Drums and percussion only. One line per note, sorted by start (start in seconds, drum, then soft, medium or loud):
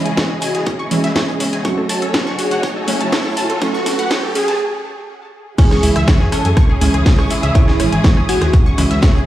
0.06 closed hi-hat soft
0.17 kick loud
0.17 snare loud
0.17 closed hi-hat medium
0.17 closed hi-hat soft
0.42 closed hi-hat medium
0.42 open hi-hat loud
0.55 snare soft
0.55 closed hi-hat soft
0.66 kick loud
0.66 closed hi-hat medium
0.66 closed hi-hat soft
0.91 closed hi-hat medium
0.91 open hi-hat loud
1.04 snare medium
1.04 closed hi-hat soft
1.16 kick loud
1.16 snare loud
1.16 closed hi-hat soft
1.16 closed hi-hat medium
1.28 closed hi-hat soft
1.40 snare soft
1.40 closed hi-hat medium
1.40 open hi-hat loud
1.53 snare soft
1.53 closed hi-hat soft
1.65 kick loud
1.65 closed hi-hat medium
1.65 closed hi-hat soft
1.89 closed hi-hat medium
1.89 open hi-hat loud
2.02 closed hi-hat soft
2.13 kick loud
2.13 snare loud
2.13 closed hi-hat soft
2.13 closed hi-hat medium
2.27 snare medium
2.39 closed hi-hat medium
2.39 open hi-hat loud
2.51 closed hi-hat soft
2.63 kick loud
2.63 closed hi-hat medium
2.63 closed hi-hat soft
2.88 closed hi-hat medium
2.88 open hi-hat loud
3.00 closed hi-hat soft
3.12 kick loud
3.12 snare loud
3.12 closed hi-hat soft
3.12 open hi-hat medium
3.37 closed hi-hat medium
3.37 open hi-hat loud
3.50 closed hi-hat soft
3.61 kick loud
3.61 closed hi-hat medium
3.61 closed hi-hat soft
3.74 snare soft
3.86 snare medium
3.86 closed hi-hat medium
3.86 open hi-hat loud
3.99 closed hi-hat soft
4.11 kick loud
4.11 snare loud
4.11 closed hi-hat soft
4.11 closed hi-hat medium
4.35 closed hi-hat medium
4.35 open hi-hat loud
4.48 snare soft
4.48 closed hi-hat soft
5.58 kick loud
5.58 closed hi-hat medium
5.58 closed hi-hat soft
5.58 crash loud
5.71 cross-stick medium
5.71 snare soft
5.83 closed hi-hat medium
5.83 open hi-hat loud
5.96 cross-stick medium
5.96 closed hi-hat soft
6.08 kick loud
6.08 snare loud
6.08 closed hi-hat soft
6.08 closed hi-hat medium
6.20 snare soft
6.32 cross-stick medium
6.32 closed hi-hat medium
6.32 open hi-hat loud
6.45 closed hi-hat soft
6.57 kick loud
6.57 cross-stick medium
6.57 closed hi-hat soft
6.57 closed hi-hat medium
6.81 closed hi-hat medium
6.81 open hi-hat loud
6.94 cross-stick soft
6.94 closed hi-hat soft
7.05 kick loud
7.05 snare loud
7.05 closed hi-hat soft
7.05 open hi-hat medium
7.19 cross-stick medium
7.30 closed hi-hat medium
7.30 open hi-hat loud
7.43 closed hi-hat soft
7.55 kick loud
7.55 cross-stick medium
7.55 closed hi-hat soft
7.55 closed hi-hat medium
7.68 snare soft
7.80 cross-stick medium
7.80 closed hi-hat medium
7.80 open hi-hat loud
7.92 closed hi-hat soft
8.04 kick loud
8.04 snare loud
8.04 closed hi-hat medium
8.04 closed hi-hat soft
8.17 cross-stick medium
8.29 closed hi-hat medium
8.29 open hi-hat loud
8.42 cross-stick medium
8.42 snare soft
8.42 closed hi-hat soft
8.53 kick loud
8.53 closed hi-hat soft
8.53 closed hi-hat medium
8.78 cross-stick medium
8.78 closed hi-hat medium
8.78 open hi-hat loud
8.91 snare soft
8.91 closed hi-hat soft
9.02 kick loud
9.02 cross-stick medium
9.02 snare loud
9.02 closed hi-hat medium
9.02 closed hi-hat soft
9.16 closed hi-hat soft